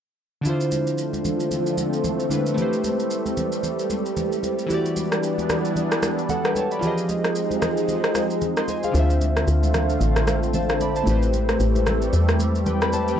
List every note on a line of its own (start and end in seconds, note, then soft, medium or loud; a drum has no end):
0.41 2.25 D3 medium
0.41 2.26 D4 medium
0.41 2.27 E4 medium
0.41 low conga medium
0.41 shaker medium
0.45 2.56 D3 medium
0.45 2.56 F3 medium
0.45 4.66 A3 medium
0.45 4.66 C4 medium
0.45 2.28 F4 medium
0.45 2.29 C5 medium
0.61 shaker medium
0.72 high conga medium
0.72 shaker medium
0.87 shaker medium
0.98 shaker medium
1.13 high conga medium
1.13 shaker medium
1.25 high conga medium
1.25 low conga medium
1.25 shaker medium
1.40 shaker medium
1.51 low conga medium
1.51 shaker medium
1.67 shaker soft
1.78 high conga medium
1.78 shaker loud
1.93 shaker soft
2.04 high conga medium
2.04 low conga medium
2.04 shaker medium
2.20 shaker soft
2.29 2.57 D3 medium
2.29 2.57 D4 medium
2.29 2.55 E4 soft
2.29 2.58 F4 soft
2.29 2.59 B4 medium
2.29 high conga medium
2.29 shaker medium
2.46 shaker soft
2.54 6.79 G3 medium
2.54 4.64 A3 medium
2.54 4.65 E4 medium
2.54 4.66 G4 medium
2.54 low conga medium
2.54 shaker medium
2.60 4.67 B4 medium
2.60 4.68 C5 medium
2.73 shaker medium
2.84 high conga medium
2.84 shaker medium
3.00 shaker medium
3.11 shaker medium
3.26 high conga medium
3.26 shaker medium
3.37 high conga medium
3.37 low conga medium
3.37 shaker medium
3.52 shaker medium
3.63 low conga medium
3.63 shaker medium
3.79 shaker medium
3.90 high conga medium
3.90 shaker loud
4.06 shaker soft
4.17 high conga medium
4.17 low conga medium
4.17 shaker medium
4.32 shaker soft
4.43 high conga medium
4.43 shaker medium
4.59 shaker medium
4.66 6.77 E3 medium
4.66 6.80 E3 medium
4.66 6.80 B3 medium
4.66 6.80 D4 medium
4.66 6.78 E4 medium
4.66 6.79 F#4 medium
4.66 low conga medium
4.66 shaker medium
4.72 6.79 G4 medium
4.72 6.28 D5 medium
4.85 shaker medium
4.97 high conga medium
4.97 shaker medium
5.12 cross-stick medium
5.12 shaker medium
5.23 shaker medium
5.38 high conga medium
5.38 shaker medium
5.50 cross-stick medium
5.50 high conga medium
5.50 low conga medium
5.50 shaker medium
5.65 shaker medium
5.76 low conga medium
5.76 shaker medium
5.92 cross-stick medium
5.92 shaker medium
6.02 cross-stick medium
6.02 high conga medium
6.02 shaker loud
6.18 shaker soft
6.29 6.44 A4 medium
6.29 6.44 F#5 medium
6.29 high conga medium
6.29 low conga medium
6.29 shaker medium
6.45 6.56 B4 medium
6.45 6.55 G5 medium
6.45 cross-stick medium
6.45 shaker soft
6.55 6.71 C#5 medium
6.55 6.71 A5 medium
6.55 high conga medium
6.55 shaker medium
6.71 6.97 D5 medium
6.71 6.97 B5 medium
6.71 shaker medium
6.79 8.37 F3 medium
6.79 8.93 F3 medium
6.79 8.93 G#3 medium
6.79 8.93 C4 medium
6.79 8.93 D#4 medium
6.79 8.38 F4 medium
6.79 8.13 G4 medium
6.79 low conga medium
6.79 shaker medium
6.85 8.14 G#4 medium
6.85 8.15 D#5 medium
6.98 shaker medium
7.09 high conga medium
7.09 shaker medium
7.24 cross-stick medium
7.24 shaker medium
7.35 shaker medium
7.51 high conga medium
7.51 shaker medium
7.62 cross-stick medium
7.62 high conga medium
7.62 low conga medium
7.62 shaker medium
7.77 shaker medium
7.88 low conga medium
7.88 shaker medium
8.04 cross-stick medium
8.04 shaker medium
8.15 cross-stick medium
8.15 high conga medium
8.15 shaker loud
8.31 shaker soft
8.41 high conga medium
8.41 low conga medium
8.41 shaker medium
8.57 8.68 D#5 medium
8.57 8.68 C6 medium
8.57 cross-stick medium
8.57 shaker soft
8.68 8.83 C5 medium
8.68 8.83 G#5 medium
8.68 high conga medium
8.68 shaker medium
8.83 9.09 G#4 medium
8.83 9.09 F5 medium
8.83 high conga medium
8.83 shaker soft
8.91 9.45 D2 medium
8.91 11.01 D3 medium
8.91 11.05 D3 medium
8.91 11.05 A3 medium
8.91 13.16 C4 medium
8.91 11.02 D4 medium
8.91 11.05 F4 medium
8.91 11.03 F4 medium
8.91 low conga medium
8.91 shaker medium
8.97 10.52 C5 medium
8.97 10.53 E5 medium
9.10 shaker medium
9.21 high conga medium
9.21 shaker medium
9.37 cross-stick medium
9.37 shaker medium
9.48 9.98 D2 medium
9.48 shaker medium
9.63 high conga medium
9.63 shaker medium
9.74 cross-stick medium
9.74 high conga medium
9.74 low conga medium
9.74 shaker medium
9.90 shaker medium
10.01 11.03 A1 medium
10.01 low conga medium
10.01 shaker medium
10.16 cross-stick medium
10.16 shaker soft
10.27 cross-stick medium
10.27 high conga medium
10.27 shaker loud
10.43 shaker soft
10.54 10.80 C5 medium
10.54 10.79 A5 medium
10.54 high conga medium
10.54 low conga medium
10.54 shaker medium
10.69 cross-stick medium
10.69 shaker soft
10.80 10.96 D5 medium
10.80 10.95 B5 medium
10.80 high conga medium
10.80 shaker medium
10.96 11.10 C5 medium
10.96 11.21 A5 medium
10.96 shaker soft
11.04 11.57 A1 medium
11.04 13.20 G3 medium
11.04 13.14 A3 medium
11.04 13.17 A3 medium
11.04 13.15 E4 medium
11.04 13.16 G4 medium
11.04 low conga medium
11.04 shaker medium
11.09 12.64 B4 medium
11.09 12.65 C5 medium
11.23 shaker medium
11.33 high conga medium
11.33 shaker medium
11.49 cross-stick medium
11.49 shaker medium
11.60 12.11 A1 medium
11.60 shaker medium
11.75 high conga medium
11.75 shaker medium
11.87 cross-stick medium
11.87 high conga medium
11.87 low conga medium
11.87 shaker medium
12.02 shaker medium
12.13 13.15 E2 medium
12.13 low conga medium
12.13 shaker medium
12.29 cross-stick medium
12.29 shaker medium
12.39 high conga medium
12.39 shaker loud
12.55 shaker soft
12.66 12.81 B4 medium
12.66 12.81 G5 medium
12.66 high conga medium
12.66 low conga medium
12.66 shaker medium
12.82 12.93 D5 medium
12.82 12.92 B5 medium
12.82 cross-stick medium
12.82 shaker soft
12.92 13.08 C5 medium
12.92 13.08 A5 medium
12.92 high conga medium
12.92 shaker medium
13.08 13.20 B4 medium
13.08 13.20 G5 medium
13.08 shaker soft
13.16 13.20 E3 medium